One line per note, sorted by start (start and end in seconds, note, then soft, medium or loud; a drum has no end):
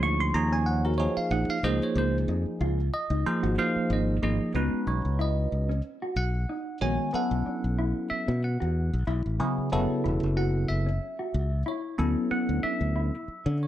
0.00 0.31 D2 loud
0.00 0.34 F3 medium
0.00 0.34 A#3 medium
0.00 0.34 D#4 medium
0.00 0.31 F4 medium
0.00 0.34 G#4 medium
0.00 0.34 C#5 medium
0.00 0.20 C#6 loud
0.20 0.35 C6 loud
0.34 1.06 D#2 loud
0.34 0.93 F3 medium
0.34 0.93 A#3 medium
0.34 0.93 D#4 medium
0.34 0.93 G#4 medium
0.34 0.93 C#5 medium
0.34 0.52 A#5 medium
0.52 0.81 C#4 medium
0.52 0.67 G#5 medium
0.66 0.84 F#5 medium
0.85 1.13 F#4 medium
0.85 0.99 A#4 medium
0.98 1.57 F3 medium
0.98 1.57 A#3 medium
0.98 1.57 D#4 medium
0.98 1.57 G#4 medium
0.98 1.16 C#5 medium
1.17 1.31 F5 medium
1.17 muted fingered electric bass stroke soft
1.31 1.47 A#1 medium
1.31 1.60 D#4 medium
1.31 1.49 F#5 medium
1.48 1.64 F5 medium
1.48 muted fingered electric bass stroke soft
1.63 1.79 C#2 medium
1.63 2.79 F3 medium
1.63 1.92 A#3 medium
1.63 2.79 A#3 medium
1.63 2.79 D#4 medium
1.63 2.79 G#4 medium
1.63 1.97 C5 medium
1.63 1.81 D#5 medium
1.83 1.97 C#5 medium
1.95 2.24 C#2 loud
1.95 2.25 A#3 medium
1.95 2.17 C5 medium
2.28 2.44 F2 medium
2.28 2.57 D#4 medium
2.46 muted fingered electric bass stroke soft
2.61 2.89 C#2 loud
2.61 2.89 F4 loud
2.94 3.54 D#5 medium
3.10 3.23 C#2 medium
3.10 3.39 D#4 medium
3.26 3.55 F3 medium
3.26 3.55 A#3 medium
3.26 3.55 D#4 medium
3.26 3.55 G#4 medium
3.26 3.55 C5 medium
3.43 3.56 G#1 medium
3.43 3.71 F#4 medium
3.58 4.16 F3 medium
3.58 4.16 A#3 medium
3.58 4.16 D#4 medium
3.58 4.16 G#4 medium
3.58 4.16 C5 medium
3.58 3.90 F5 loud
3.76 muted fingered electric bass stroke soft
3.90 4.18 G#1 loud
3.90 4.18 D#4 medium
3.90 4.22 D#5 medium
4.22 4.38 G#1 loud
4.22 4.52 F3 medium
4.22 4.51 A#3 medium
4.22 4.52 A#3 medium
4.22 4.52 D#4 medium
4.22 4.52 G#4 medium
4.22 4.52 D#5 medium
4.54 4.70 C#2 medium
4.54 5.70 G#3 medium
4.54 4.83 B3 medium
4.54 5.70 C#4 medium
4.54 5.70 D#4 medium
4.54 5.70 F#4 medium
4.54 5.70 B4 medium
4.73 muted fingered electric bass stroke soft
4.87 5.02 B1 medium
4.87 5.15 D#4 medium
4.87 5.19 C#5 medium
5.05 5.46 C#2 medium
5.19 5.47 E4 medium
5.19 5.81 D#5 medium
5.52 5.80 C#2 medium
5.69 5.98 C#4 medium
6.02 6.30 F#4 medium
6.16 6.44 B1 medium
6.16 6.77 F#5 medium
6.49 6.77 D#4 medium
6.81 6.97 A#1 medium
6.81 7.10 D#3 medium
6.81 7.10 G#3 medium
6.81 7.10 B3 medium
6.81 7.10 C#4 medium
6.81 7.10 F#4 medium
6.81 7.10 C#5 medium
6.81 7.13 G#5 medium
7.13 8.29 F#3 medium
7.13 7.41 B3 medium
7.13 8.29 B3 medium
7.13 8.29 C#4 medium
7.13 8.29 E4 medium
7.13 8.29 A4 medium
7.13 8.08 F#5 medium
7.13 muted fingered electric bass stroke soft
7.31 7.44 B1 medium
7.46 7.74 D4 medium
7.46 muted fingered electric bass stroke soft
7.64 7.92 B1 medium
7.79 8.07 E4 medium
8.10 8.42 E5 medium
8.10 muted fingered electric bass stroke soft
8.28 8.56 B2 loud
8.28 8.56 C#4 medium
8.44 9.04 F#5 medium
8.60 8.89 E2 medium
8.60 8.89 F#4 medium
8.93 9.06 B1 medium
9.07 9.23 B1 loud
9.07 9.36 E4 medium
9.26 9.38 A1 medium
9.40 9.69 C#3 medium
9.40 9.69 F#3 medium
9.40 9.68 B3 medium
9.40 9.69 B3 medium
9.40 9.69 E4 medium
9.40 9.69 G#4 medium
9.58 muted fingered electric bass stroke soft
9.72 9.88 F#1 loud
9.72 10.88 C#3 medium
9.72 10.88 F#3 medium
9.72 10.00 B3 medium
9.72 10.88 B3 medium
9.72 10.88 E4 medium
9.72 10.88 A4 loud
9.91 muted fingered electric bass stroke soft
10.04 10.21 E1 loud
10.04 10.33 E4 medium
10.23 10.64 F#1 medium
10.37 10.65 F#4 medium
10.37 10.69 F#5 medium
10.69 10.98 F#1 medium
10.69 11.62 E5 medium
10.86 11.15 C#4 medium
11.19 11.48 F#4 medium
11.34 11.62 C#2 medium
11.66 11.94 E4 medium
11.66 11.99 C#5 medium
11.98 12.14 D2 medium
11.98 13.14 F#3 medium
11.98 13.14 B3 medium
11.98 12.27 B3 medium
11.98 13.14 C#4 medium
11.98 13.14 E4 medium
11.98 13.14 A4 medium
12.31 12.59 B3 medium
12.31 12.63 F#5 medium
12.31 muted fingered electric bass stroke soft
12.49 12.62 D2 medium
12.63 12.92 D4 medium
12.63 13.57 E5 loud
12.63 muted fingered electric bass stroke soft
12.81 13.09 D2 medium
12.96 13.24 E4 medium
13.28 muted fingered electric bass stroke soft
13.46 13.68 D3 loud
13.46 13.68 C#4 medium
13.63 13.68 C#5 medium